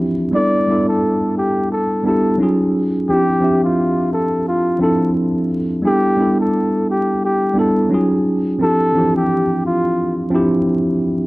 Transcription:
Already playing: tine electric piano F3 C4 D4 E4 G4
0.31 tine electric piano G3 B3 D4 E4, muted trumpet D5
0.36 tine electric piano A4
0.67 tine electric piano G3 B3 D4 E4
0.72 tine electric piano A4
0.88 muted trumpet A4
1.38 muted trumpet G4
1.72 muted trumpet A4
2.03 tine electric piano G3 B3 D4 E4, muted trumpet A4
2.08 tine electric piano G4
2.38 tine electric piano F#3 C#4 D#4 F4
2.43 tine electric piano G#4
3.09 tine electric piano F3 C4 D4 E4, muted trumpet G4
3.14 tine electric piano G4
3.40 tine electric piano F3 C4 D4 E5
3.45 tine electric piano G4
3.64 muted trumpet F4
4.13 muted trumpet A4
4.48 muted trumpet F4
4.79 tine electric piano F3 C4 D4 E4, muted trumpet A4
4.84 tine electric piano A4
5.82 tine electric piano G3 B3 D4 E4, muted trumpet G4
5.87 tine electric piano A4
6.16 tine electric piano G3 B3 D4 E4
6.21 tine electric piano A4
6.41 muted trumpet A4
6.90 muted trumpet G4
7.25 muted trumpet G4
7.54 tine electric piano G3 B3 D4 E4
7.59 tine electric piano A4, muted trumpet A4
7.89 tine electric piano F#3 C#4 D#4 F4
7.94 tine electric piano G#4
8.58 tine electric piano F3 C4 D4 E4
8.63 tine electric piano G4, muted trumpet A4
8.93 tine electric piano E3 C4 D4 E4
8.98 tine electric piano F3 G4
9.16 muted trumpet G4
9.66 muted trumpet F4
10.30 tine electric piano F3 C4 D4 E4
10.35 tine electric piano G4

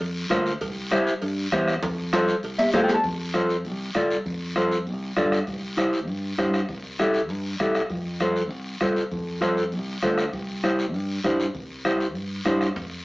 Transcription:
0.00 fingered electric bass F2, cowbell, long guiro
0.30 fingered electric bass D2, clean electric guitar F4 A#4 C5, bombo low, bombo rim, high conga, low conga, short guiro
0.46 short guiro
0.61 fingered electric bass C2, bombo low, cowbell, high conga, long guiro
0.91 clean electric guitar E4 G4 C5, bombo rim, high conga, short guiro
1.07 short guiro
1.22 fingered electric bass G2, cowbell, high conga, long guiro
1.52 fingered electric bass E2, clean electric guitar E4 G4 C5, bombo low, bombo rim, high conga, short guiro
1.68 bombo rim, short guiro
1.82 fingered electric bass F2, bombo low, cowbell, high conga, high timbale, long guiro
2.13 clean electric guitar F4 A4 C5, bombo rim, high conga, high timbale, short guiro
2.28 short guiro
2.43 fingered electric bass C2, cowbell, high conga, long guiro
2.58 clean electric guitar E5, low timbale
2.73 fingered electric bass A2, clean electric guitar F4 A4 C5 F5, bombo low, bombo rim, high conga, low conga, low timbale, short guiro
2.84 clean electric guitar G5
2.88 low timbale, short guiro
2.94 clean electric guitar A5
3.04 fingered electric bass F2, bombo low, high conga, long guiro
3.34 clean electric guitar F4 A4 C5, bombo rim, high conga, short guiro
3.49 short guiro
3.65 fingered electric bass C2, high conga, long guiro
3.95 fingered electric bass C2, clean electric guitar F4 A4 D5, bombo low, bombo rim, high conga, short guiro
4.11 short guiro
4.26 fingered electric bass F2, bombo low, high conga, long guiro
4.56 clean electric guitar F4 A4 C5, bombo rim, high conga, short guiro
4.72 short guiro
4.87 fingered electric bass C2, high conga, long guiro
5.17 fingered electric bass G2, clean electric guitar F4 A4 D5, bombo low, bombo rim, high conga, short guiro
5.32 bombo rim, short guiro
5.47 fingered electric bass C2, bombo low, high conga, long guiro
5.77 clean electric guitar E4 G4 C5, bombo rim, high conga, short guiro
5.93 short guiro
6.08 fingered electric bass G2, high conga, long guiro
6.38 fingered electric bass G2, clean electric guitar E4 G4 C5, bombo low, bombo rim, high conga, short guiro
6.53 bombo rim, short guiro
6.69 fingered electric bass C2, bombo low, long guiro
6.99 clean electric guitar E4 G4 A4, bombo rim, high conga, short guiro
7.14 short guiro
7.29 fingered electric bass G2, high conga, long guiro
7.59 fingered electric bass C2, clean electric guitar E4 G4 A4, bombo low, bombo rim, high conga, short guiro
7.74 bombo rim, short guiro
7.90 fingered electric bass F2, bombo low, high conga, long guiro
8.20 clean electric guitar F4 A4 C5, bombo rim, high conga, short guiro
8.36 short guiro
8.51 fingered electric bass C2, high conga, long guiro
8.81 fingered electric bass C2, clean electric guitar F4 A4 C5, bombo low, bombo rim, high conga, short guiro
8.96 short guiro
9.11 fingered electric bass F2, bombo low, high conga, long guiro
9.41 clean electric guitar F4 A4 C5, bombo rim, high conga, short guiro
9.57 short guiro
9.72 fingered electric bass C2, high conga, long guiro
10.02 fingered electric bass D2, clean electric guitar F4 A4 C5, bombo low, bombo rim, high conga, short guiro
10.18 bombo rim, short guiro
10.33 fingered electric bass C2, bombo low, high conga, long guiro
10.64 clean electric guitar E4 G4 C5, bombo rim, high conga, short guiro
10.79 short guiro
10.94 fingered electric bass G2, high conga, long guiro
11.24 fingered electric bass G2, clean electric guitar E4 G4 C5, bombo low, bombo rim, high conga, short guiro
11.40 short guiro
11.55 fingered electric bass C2, bombo low, high conga, long guiro
11.85 clean electric guitar E4 G4 C5, bombo rim, high conga, short guiro
12.00 short guiro
12.15 fingered electric bass G2, high conga, long guiro
12.45 fingered electric bass G2, clean electric guitar E4 G4 C5, bombo low, bombo rim, high conga, short guiro
12.61 bombo rim, short guiro
12.76 fingered electric bass F2, bombo low, high timbale, long guiro

